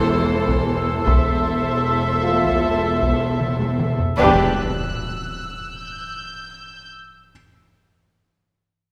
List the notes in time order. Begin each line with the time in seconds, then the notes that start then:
Already playing: E1 E2 E3 A4 C5 F5 C6 E6
0.48 taiko
1.06 E1 E2 A4 C5 E5, taiko
2.23 F4 F5
2.43 taiko
3.02 taiko
3.41 taiko mid
3.60 taiko high
3.80 taiko mid
3.99 taiko low
4.18 E1 E2 D4 G4 B4 E6 F#6, impact
5.77 G6